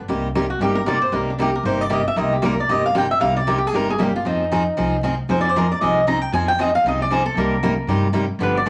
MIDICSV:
0, 0, Header, 1, 4, 480
1, 0, Start_track
1, 0, Key_signature, -3, "minor"
1, 0, Tempo, 259965
1, 166, Time_signature, 4, 2, 24, 8
1, 16047, End_track
2, 0, Start_track
2, 0, Title_t, "Steel-string acoustic guitar"
2, 0, Program_c, 0, 25
2, 923, Note_on_c, 0, 66, 78
2, 1127, Note_off_c, 0, 66, 0
2, 1149, Note_on_c, 0, 67, 75
2, 1391, Note_on_c, 0, 70, 96
2, 1400, Note_off_c, 0, 67, 0
2, 1602, Note_off_c, 0, 70, 0
2, 1627, Note_on_c, 0, 74, 86
2, 1869, Note_off_c, 0, 74, 0
2, 1877, Note_on_c, 0, 72, 84
2, 2122, Note_off_c, 0, 72, 0
2, 2122, Note_on_c, 0, 70, 78
2, 2367, Note_off_c, 0, 70, 0
2, 2401, Note_on_c, 0, 62, 45
2, 2589, Note_off_c, 0, 62, 0
2, 2611, Note_on_c, 0, 67, 76
2, 2853, Note_off_c, 0, 67, 0
2, 2871, Note_on_c, 0, 70, 79
2, 3051, Note_off_c, 0, 70, 0
2, 3059, Note_on_c, 0, 72, 77
2, 3342, Note_off_c, 0, 72, 0
2, 3342, Note_on_c, 0, 74, 98
2, 3540, Note_off_c, 0, 74, 0
2, 3563, Note_on_c, 0, 75, 78
2, 3810, Note_off_c, 0, 75, 0
2, 3833, Note_on_c, 0, 76, 104
2, 4019, Note_off_c, 0, 76, 0
2, 4026, Note_on_c, 0, 75, 78
2, 4282, Note_off_c, 0, 75, 0
2, 4290, Note_on_c, 0, 67, 52
2, 4495, Note_off_c, 0, 67, 0
2, 4526, Note_on_c, 0, 70, 80
2, 4772, Note_off_c, 0, 70, 0
2, 4803, Note_on_c, 0, 74, 81
2, 4992, Note_off_c, 0, 74, 0
2, 5003, Note_on_c, 0, 75, 87
2, 5251, Note_off_c, 0, 75, 0
2, 5276, Note_on_c, 0, 77, 95
2, 5469, Note_off_c, 0, 77, 0
2, 5497, Note_on_c, 0, 79, 91
2, 5734, Note_off_c, 0, 79, 0
2, 5742, Note_on_c, 0, 76, 88
2, 5916, Note_off_c, 0, 76, 0
2, 5923, Note_on_c, 0, 77, 99
2, 6191, Note_off_c, 0, 77, 0
2, 6212, Note_on_c, 0, 74, 86
2, 6417, Note_off_c, 0, 74, 0
2, 6421, Note_on_c, 0, 70, 69
2, 6577, Note_off_c, 0, 70, 0
2, 6616, Note_on_c, 0, 67, 74
2, 6774, Note_off_c, 0, 67, 0
2, 6774, Note_on_c, 0, 68, 66
2, 6914, Note_off_c, 0, 68, 0
2, 6934, Note_on_c, 0, 70, 87
2, 7177, Note_off_c, 0, 70, 0
2, 7206, Note_on_c, 0, 68, 89
2, 7394, Note_off_c, 0, 68, 0
2, 7434, Note_on_c, 0, 67, 73
2, 7667, Note_off_c, 0, 67, 0
2, 7675, Note_on_c, 0, 65, 75
2, 7867, Note_off_c, 0, 65, 0
2, 7875, Note_on_c, 0, 63, 64
2, 9233, Note_off_c, 0, 63, 0
2, 9798, Note_on_c, 0, 72, 82
2, 9944, Note_off_c, 0, 72, 0
2, 9983, Note_on_c, 0, 74, 90
2, 10139, Note_off_c, 0, 74, 0
2, 10139, Note_on_c, 0, 72, 76
2, 10275, Note_off_c, 0, 72, 0
2, 10302, Note_on_c, 0, 70, 79
2, 10539, Note_off_c, 0, 70, 0
2, 10556, Note_on_c, 0, 74, 85
2, 10726, Note_off_c, 0, 74, 0
2, 10733, Note_on_c, 0, 75, 86
2, 11181, Note_off_c, 0, 75, 0
2, 11221, Note_on_c, 0, 82, 90
2, 11478, Note_off_c, 0, 82, 0
2, 11478, Note_on_c, 0, 79, 107
2, 11687, Note_off_c, 0, 79, 0
2, 11696, Note_on_c, 0, 80, 100
2, 11954, Note_off_c, 0, 80, 0
2, 11969, Note_on_c, 0, 79, 109
2, 12172, Note_off_c, 0, 79, 0
2, 12210, Note_on_c, 0, 75, 89
2, 12451, Note_off_c, 0, 75, 0
2, 12464, Note_on_c, 0, 77, 98
2, 12659, Note_off_c, 0, 77, 0
2, 12709, Note_on_c, 0, 75, 86
2, 12940, Note_off_c, 0, 75, 0
2, 12961, Note_on_c, 0, 74, 99
2, 13147, Note_off_c, 0, 74, 0
2, 13155, Note_on_c, 0, 72, 78
2, 13392, Note_off_c, 0, 72, 0
2, 13399, Note_on_c, 0, 69, 91
2, 13645, Note_off_c, 0, 69, 0
2, 13645, Note_on_c, 0, 70, 76
2, 14585, Note_off_c, 0, 70, 0
2, 15566, Note_on_c, 0, 71, 76
2, 15804, Note_off_c, 0, 71, 0
2, 15831, Note_on_c, 0, 74, 87
2, 16039, Note_off_c, 0, 74, 0
2, 16047, End_track
3, 0, Start_track
3, 0, Title_t, "Steel-string acoustic guitar"
3, 0, Program_c, 1, 25
3, 152, Note_on_c, 1, 48, 69
3, 167, Note_on_c, 1, 55, 67
3, 172, Note_on_c, 1, 58, 65
3, 175, Note_on_c, 1, 63, 68
3, 178, Note_on_c, 1, 67, 69
3, 493, Note_off_c, 1, 48, 0
3, 501, Note_off_c, 1, 55, 0
3, 503, Note_off_c, 1, 58, 0
3, 504, Note_off_c, 1, 63, 0
3, 506, Note_off_c, 1, 67, 0
3, 652, Note_on_c, 1, 48, 89
3, 653, Note_on_c, 1, 55, 92
3, 653, Note_on_c, 1, 58, 90
3, 653, Note_on_c, 1, 63, 93
3, 672, Note_on_c, 1, 67, 96
3, 835, Note_off_c, 1, 48, 0
3, 836, Note_off_c, 1, 55, 0
3, 836, Note_off_c, 1, 58, 0
3, 836, Note_off_c, 1, 63, 0
3, 845, Note_off_c, 1, 67, 0
3, 1122, Note_on_c, 1, 55, 68
3, 1124, Note_on_c, 1, 48, 75
3, 1132, Note_on_c, 1, 58, 74
3, 1139, Note_on_c, 1, 63, 76
3, 1144, Note_on_c, 1, 67, 74
3, 1460, Note_off_c, 1, 55, 0
3, 1461, Note_off_c, 1, 48, 0
3, 1465, Note_off_c, 1, 58, 0
3, 1468, Note_off_c, 1, 63, 0
3, 1471, Note_off_c, 1, 67, 0
3, 1591, Note_on_c, 1, 48, 81
3, 1595, Note_on_c, 1, 55, 90
3, 1607, Note_on_c, 1, 63, 89
3, 1617, Note_on_c, 1, 58, 81
3, 1621, Note_on_c, 1, 67, 88
3, 1787, Note_off_c, 1, 48, 0
3, 1789, Note_off_c, 1, 55, 0
3, 1795, Note_off_c, 1, 63, 0
3, 1800, Note_off_c, 1, 58, 0
3, 1802, Note_off_c, 1, 67, 0
3, 2071, Note_on_c, 1, 48, 61
3, 2076, Note_on_c, 1, 55, 72
3, 2082, Note_on_c, 1, 58, 68
3, 2092, Note_on_c, 1, 63, 72
3, 2098, Note_on_c, 1, 67, 71
3, 2416, Note_off_c, 1, 48, 0
3, 2418, Note_off_c, 1, 55, 0
3, 2422, Note_off_c, 1, 58, 0
3, 2426, Note_off_c, 1, 63, 0
3, 2429, Note_off_c, 1, 67, 0
3, 2557, Note_on_c, 1, 55, 86
3, 2560, Note_on_c, 1, 48, 86
3, 2577, Note_on_c, 1, 67, 93
3, 2580, Note_on_c, 1, 58, 98
3, 2582, Note_on_c, 1, 63, 90
3, 2751, Note_off_c, 1, 55, 0
3, 2753, Note_off_c, 1, 48, 0
3, 2761, Note_off_c, 1, 67, 0
3, 2763, Note_off_c, 1, 58, 0
3, 2764, Note_off_c, 1, 63, 0
3, 3050, Note_on_c, 1, 48, 70
3, 3051, Note_on_c, 1, 55, 75
3, 3053, Note_on_c, 1, 58, 72
3, 3066, Note_on_c, 1, 63, 76
3, 3067, Note_on_c, 1, 67, 76
3, 3386, Note_off_c, 1, 48, 0
3, 3387, Note_off_c, 1, 55, 0
3, 3388, Note_off_c, 1, 58, 0
3, 3395, Note_off_c, 1, 63, 0
3, 3395, Note_off_c, 1, 67, 0
3, 3499, Note_on_c, 1, 48, 87
3, 3508, Note_on_c, 1, 55, 82
3, 3513, Note_on_c, 1, 58, 87
3, 3516, Note_on_c, 1, 67, 90
3, 3518, Note_on_c, 1, 63, 87
3, 3704, Note_off_c, 1, 48, 0
3, 3708, Note_off_c, 1, 55, 0
3, 3710, Note_off_c, 1, 58, 0
3, 3712, Note_off_c, 1, 67, 0
3, 3713, Note_off_c, 1, 63, 0
3, 3992, Note_on_c, 1, 48, 68
3, 4003, Note_on_c, 1, 63, 77
3, 4008, Note_on_c, 1, 55, 69
3, 4014, Note_on_c, 1, 67, 72
3, 4015, Note_on_c, 1, 58, 70
3, 4339, Note_off_c, 1, 48, 0
3, 4344, Note_off_c, 1, 63, 0
3, 4347, Note_off_c, 1, 55, 0
3, 4349, Note_off_c, 1, 67, 0
3, 4350, Note_off_c, 1, 58, 0
3, 4466, Note_on_c, 1, 48, 86
3, 4472, Note_on_c, 1, 55, 95
3, 4480, Note_on_c, 1, 58, 99
3, 4481, Note_on_c, 1, 63, 100
3, 4497, Note_on_c, 1, 67, 97
3, 4668, Note_off_c, 1, 48, 0
3, 4671, Note_off_c, 1, 55, 0
3, 4675, Note_off_c, 1, 58, 0
3, 4675, Note_off_c, 1, 63, 0
3, 4683, Note_off_c, 1, 67, 0
3, 4970, Note_on_c, 1, 48, 74
3, 4973, Note_on_c, 1, 55, 74
3, 4973, Note_on_c, 1, 58, 74
3, 4978, Note_on_c, 1, 67, 84
3, 4980, Note_on_c, 1, 63, 76
3, 5308, Note_off_c, 1, 48, 0
3, 5310, Note_off_c, 1, 55, 0
3, 5310, Note_off_c, 1, 58, 0
3, 5312, Note_off_c, 1, 67, 0
3, 5313, Note_off_c, 1, 63, 0
3, 5443, Note_on_c, 1, 48, 90
3, 5443, Note_on_c, 1, 55, 86
3, 5444, Note_on_c, 1, 58, 90
3, 5453, Note_on_c, 1, 63, 92
3, 5464, Note_on_c, 1, 67, 94
3, 5637, Note_off_c, 1, 48, 0
3, 5637, Note_off_c, 1, 55, 0
3, 5637, Note_off_c, 1, 58, 0
3, 5642, Note_off_c, 1, 63, 0
3, 5647, Note_off_c, 1, 67, 0
3, 5904, Note_on_c, 1, 48, 70
3, 5918, Note_on_c, 1, 55, 68
3, 5929, Note_on_c, 1, 58, 70
3, 5931, Note_on_c, 1, 63, 75
3, 5936, Note_on_c, 1, 67, 66
3, 6256, Note_off_c, 1, 48, 0
3, 6263, Note_off_c, 1, 55, 0
3, 6268, Note_off_c, 1, 58, 0
3, 6269, Note_off_c, 1, 63, 0
3, 6271, Note_off_c, 1, 67, 0
3, 6405, Note_on_c, 1, 63, 89
3, 6406, Note_on_c, 1, 48, 87
3, 6409, Note_on_c, 1, 55, 88
3, 6416, Note_on_c, 1, 67, 100
3, 6419, Note_on_c, 1, 58, 98
3, 6598, Note_off_c, 1, 48, 0
3, 6598, Note_off_c, 1, 63, 0
3, 6600, Note_off_c, 1, 55, 0
3, 6604, Note_off_c, 1, 67, 0
3, 6605, Note_off_c, 1, 58, 0
3, 6903, Note_on_c, 1, 48, 76
3, 6904, Note_on_c, 1, 55, 72
3, 6905, Note_on_c, 1, 67, 82
3, 6910, Note_on_c, 1, 58, 77
3, 6921, Note_on_c, 1, 63, 75
3, 7235, Note_off_c, 1, 48, 0
3, 7235, Note_off_c, 1, 55, 0
3, 7236, Note_off_c, 1, 67, 0
3, 7238, Note_off_c, 1, 58, 0
3, 7244, Note_off_c, 1, 63, 0
3, 7357, Note_on_c, 1, 48, 83
3, 7365, Note_on_c, 1, 55, 85
3, 7376, Note_on_c, 1, 58, 96
3, 7378, Note_on_c, 1, 63, 81
3, 7392, Note_on_c, 1, 67, 84
3, 7554, Note_off_c, 1, 48, 0
3, 7558, Note_off_c, 1, 55, 0
3, 7564, Note_off_c, 1, 58, 0
3, 7565, Note_off_c, 1, 63, 0
3, 7572, Note_off_c, 1, 67, 0
3, 7848, Note_on_c, 1, 53, 70
3, 7864, Note_on_c, 1, 60, 68
3, 7872, Note_on_c, 1, 68, 70
3, 7878, Note_on_c, 1, 63, 67
3, 8187, Note_off_c, 1, 53, 0
3, 8195, Note_off_c, 1, 60, 0
3, 8199, Note_off_c, 1, 68, 0
3, 8202, Note_off_c, 1, 63, 0
3, 8337, Note_on_c, 1, 53, 88
3, 8350, Note_on_c, 1, 63, 102
3, 8350, Note_on_c, 1, 68, 90
3, 8354, Note_on_c, 1, 60, 95
3, 8524, Note_off_c, 1, 53, 0
3, 8530, Note_off_c, 1, 63, 0
3, 8530, Note_off_c, 1, 68, 0
3, 8532, Note_off_c, 1, 60, 0
3, 8806, Note_on_c, 1, 53, 73
3, 8816, Note_on_c, 1, 60, 73
3, 8817, Note_on_c, 1, 63, 83
3, 8831, Note_on_c, 1, 68, 80
3, 9146, Note_off_c, 1, 53, 0
3, 9151, Note_off_c, 1, 60, 0
3, 9152, Note_off_c, 1, 63, 0
3, 9158, Note_off_c, 1, 68, 0
3, 9290, Note_on_c, 1, 53, 84
3, 9299, Note_on_c, 1, 60, 86
3, 9300, Note_on_c, 1, 63, 97
3, 9316, Note_on_c, 1, 68, 97
3, 9480, Note_off_c, 1, 53, 0
3, 9484, Note_off_c, 1, 60, 0
3, 9485, Note_off_c, 1, 63, 0
3, 9493, Note_off_c, 1, 68, 0
3, 9768, Note_on_c, 1, 53, 63
3, 9774, Note_on_c, 1, 63, 69
3, 9777, Note_on_c, 1, 60, 72
3, 9782, Note_on_c, 1, 68, 77
3, 10106, Note_off_c, 1, 53, 0
3, 10109, Note_off_c, 1, 63, 0
3, 10110, Note_off_c, 1, 60, 0
3, 10113, Note_off_c, 1, 68, 0
3, 10266, Note_on_c, 1, 53, 83
3, 10272, Note_on_c, 1, 60, 96
3, 10280, Note_on_c, 1, 63, 92
3, 10282, Note_on_c, 1, 68, 100
3, 10447, Note_off_c, 1, 53, 0
3, 10450, Note_off_c, 1, 60, 0
3, 10454, Note_off_c, 1, 63, 0
3, 10455, Note_off_c, 1, 68, 0
3, 10744, Note_on_c, 1, 53, 74
3, 10754, Note_on_c, 1, 60, 72
3, 10765, Note_on_c, 1, 63, 84
3, 10765, Note_on_c, 1, 68, 80
3, 11073, Note_off_c, 1, 53, 0
3, 11078, Note_off_c, 1, 60, 0
3, 11083, Note_off_c, 1, 63, 0
3, 11083, Note_off_c, 1, 68, 0
3, 11208, Note_on_c, 1, 53, 85
3, 11215, Note_on_c, 1, 60, 85
3, 11222, Note_on_c, 1, 63, 96
3, 11226, Note_on_c, 1, 68, 99
3, 11397, Note_off_c, 1, 53, 0
3, 11401, Note_off_c, 1, 60, 0
3, 11404, Note_off_c, 1, 63, 0
3, 11406, Note_off_c, 1, 68, 0
3, 11694, Note_on_c, 1, 53, 69
3, 11695, Note_on_c, 1, 60, 75
3, 11705, Note_on_c, 1, 68, 75
3, 11710, Note_on_c, 1, 63, 72
3, 12027, Note_off_c, 1, 53, 0
3, 12027, Note_off_c, 1, 60, 0
3, 12032, Note_off_c, 1, 68, 0
3, 12034, Note_off_c, 1, 63, 0
3, 12161, Note_on_c, 1, 53, 91
3, 12170, Note_on_c, 1, 60, 92
3, 12175, Note_on_c, 1, 63, 102
3, 12183, Note_on_c, 1, 68, 104
3, 12352, Note_off_c, 1, 53, 0
3, 12357, Note_off_c, 1, 60, 0
3, 12359, Note_off_c, 1, 63, 0
3, 12363, Note_off_c, 1, 68, 0
3, 12662, Note_on_c, 1, 53, 77
3, 12664, Note_on_c, 1, 60, 78
3, 12676, Note_on_c, 1, 63, 87
3, 12680, Note_on_c, 1, 68, 84
3, 12989, Note_off_c, 1, 53, 0
3, 12990, Note_off_c, 1, 60, 0
3, 12997, Note_off_c, 1, 63, 0
3, 12999, Note_off_c, 1, 68, 0
3, 13118, Note_on_c, 1, 53, 90
3, 13124, Note_on_c, 1, 60, 87
3, 13137, Note_on_c, 1, 63, 97
3, 13143, Note_on_c, 1, 68, 103
3, 13309, Note_off_c, 1, 53, 0
3, 13313, Note_off_c, 1, 60, 0
3, 13319, Note_off_c, 1, 63, 0
3, 13322, Note_off_c, 1, 68, 0
3, 13608, Note_on_c, 1, 55, 70
3, 13610, Note_on_c, 1, 48, 70
3, 13619, Note_on_c, 1, 63, 73
3, 13621, Note_on_c, 1, 58, 75
3, 13636, Note_on_c, 1, 67, 83
3, 13941, Note_off_c, 1, 55, 0
3, 13942, Note_off_c, 1, 48, 0
3, 13947, Note_off_c, 1, 58, 0
3, 13947, Note_off_c, 1, 63, 0
3, 13955, Note_off_c, 1, 67, 0
3, 14084, Note_on_c, 1, 48, 91
3, 14093, Note_on_c, 1, 67, 95
3, 14095, Note_on_c, 1, 55, 92
3, 14095, Note_on_c, 1, 58, 103
3, 14096, Note_on_c, 1, 63, 104
3, 14271, Note_off_c, 1, 48, 0
3, 14276, Note_off_c, 1, 67, 0
3, 14277, Note_off_c, 1, 55, 0
3, 14277, Note_off_c, 1, 58, 0
3, 14277, Note_off_c, 1, 63, 0
3, 14557, Note_on_c, 1, 48, 74
3, 14565, Note_on_c, 1, 55, 74
3, 14566, Note_on_c, 1, 63, 81
3, 14567, Note_on_c, 1, 58, 74
3, 14583, Note_on_c, 1, 67, 80
3, 14894, Note_off_c, 1, 48, 0
3, 14898, Note_off_c, 1, 55, 0
3, 14898, Note_off_c, 1, 63, 0
3, 14899, Note_off_c, 1, 58, 0
3, 14907, Note_off_c, 1, 67, 0
3, 15010, Note_on_c, 1, 48, 86
3, 15020, Note_on_c, 1, 63, 92
3, 15022, Note_on_c, 1, 55, 85
3, 15027, Note_on_c, 1, 58, 90
3, 15032, Note_on_c, 1, 67, 89
3, 15213, Note_off_c, 1, 48, 0
3, 15217, Note_off_c, 1, 63, 0
3, 15219, Note_off_c, 1, 55, 0
3, 15221, Note_off_c, 1, 58, 0
3, 15223, Note_off_c, 1, 67, 0
3, 15513, Note_on_c, 1, 50, 65
3, 15519, Note_on_c, 1, 53, 69
3, 15521, Note_on_c, 1, 59, 72
3, 15526, Note_on_c, 1, 62, 71
3, 15529, Note_on_c, 1, 67, 77
3, 15851, Note_off_c, 1, 50, 0
3, 15854, Note_off_c, 1, 53, 0
3, 15855, Note_off_c, 1, 59, 0
3, 15857, Note_off_c, 1, 62, 0
3, 15859, Note_off_c, 1, 67, 0
3, 15987, Note_on_c, 1, 50, 87
3, 16047, Note_off_c, 1, 50, 0
3, 16047, End_track
4, 0, Start_track
4, 0, Title_t, "Upright bass"
4, 0, Program_c, 2, 32
4, 157, Note_on_c, 2, 36, 88
4, 932, Note_off_c, 2, 36, 0
4, 1097, Note_on_c, 2, 31, 78
4, 1881, Note_off_c, 2, 31, 0
4, 2071, Note_on_c, 2, 36, 88
4, 2850, Note_off_c, 2, 36, 0
4, 3017, Note_on_c, 2, 31, 83
4, 3803, Note_off_c, 2, 31, 0
4, 3994, Note_on_c, 2, 36, 90
4, 4773, Note_off_c, 2, 36, 0
4, 4969, Note_on_c, 2, 31, 80
4, 5743, Note_off_c, 2, 31, 0
4, 5928, Note_on_c, 2, 36, 92
4, 6702, Note_off_c, 2, 36, 0
4, 6881, Note_on_c, 2, 31, 84
4, 7657, Note_off_c, 2, 31, 0
4, 7862, Note_on_c, 2, 41, 85
4, 8629, Note_off_c, 2, 41, 0
4, 8823, Note_on_c, 2, 36, 79
4, 9589, Note_off_c, 2, 36, 0
4, 9767, Note_on_c, 2, 41, 90
4, 10539, Note_off_c, 2, 41, 0
4, 10727, Note_on_c, 2, 36, 83
4, 11498, Note_off_c, 2, 36, 0
4, 11679, Note_on_c, 2, 41, 94
4, 12452, Note_off_c, 2, 41, 0
4, 12628, Note_on_c, 2, 36, 85
4, 13404, Note_off_c, 2, 36, 0
4, 13579, Note_on_c, 2, 36, 94
4, 14358, Note_off_c, 2, 36, 0
4, 14539, Note_on_c, 2, 43, 83
4, 15316, Note_off_c, 2, 43, 0
4, 15491, Note_on_c, 2, 31, 90
4, 16047, Note_off_c, 2, 31, 0
4, 16047, End_track
0, 0, End_of_file